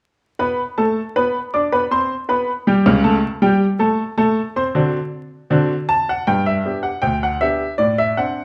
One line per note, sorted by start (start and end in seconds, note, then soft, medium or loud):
0.39 0.60 B3 medium
0.39 0.60 B4 medium
0.39 0.60 B5 medium
0.78 0.99 A3 medium
0.78 0.99 A4 medium
0.78 0.99 A5 medium
1.16 1.37 B3 medium
1.16 1.37 B4 medium
1.16 1.37 B5 medium
1.54 1.65 D4 medium
1.54 1.64 D5 medium
1.54 1.64 D6 medium
1.72 1.83 B3 medium
1.72 1.83 B4 medium
1.72 1.83 B5 medium
1.91 2.12 C4 medium
1.91 2.12 C5 medium
1.91 2.12 C6 medium
2.29 2.50 B3 medium
2.29 2.50 B4 medium
2.29 2.50 B5 medium
2.67 2.88 G3 medium
2.67 2.88 G4 medium
2.67 2.88 G5 medium
2.86 3.16 C#2 medium
2.86 3.16 C#3 medium
3.04 3.25 A3 medium
3.04 3.25 A4 medium
3.04 3.25 A5 medium
3.42 3.63 G3 medium
3.42 3.63 G4 medium
3.42 3.63 G5 medium
3.79 4.01 A3 medium
3.79 4.00 A4 medium
3.79 4.01 A5 medium
4.17 4.38 A3 medium
4.17 4.39 A4 medium
4.17 4.39 A5 medium
4.56 4.67 C4 medium
4.56 4.67 C5 medium
4.56 4.67 C6 medium
4.75 4.96 D3 medium
4.75 4.96 C4 medium
4.75 4.96 D4 medium
4.75 4.96 F#4 medium
5.50 5.72 D3 medium
5.50 5.71 C4 medium
5.50 5.72 D4 medium
5.50 5.72 F#4 medium
5.89 6.08 A5 loud
6.09 6.28 F#5 medium
6.27 6.60 G2 medium
6.27 6.46 G5 medium
6.46 6.77 E5 medium
6.65 6.86 B3 soft
6.65 6.86 D4 soft
6.65 6.87 G4 soft
6.83 7.03 F#5 medium
7.02 7.35 D2 medium
7.02 7.22 G5 medium
7.23 7.42 F#5 medium
7.41 7.62 B3 soft
7.41 7.63 D4 soft
7.41 7.63 G4 soft
7.41 7.71 E5 medium
7.78 8.11 A2 medium
7.78 7.98 D5 medium
7.98 8.17 E5 medium
8.17 8.38 C4 soft
8.17 8.39 D4 soft
8.17 8.45 F#5 medium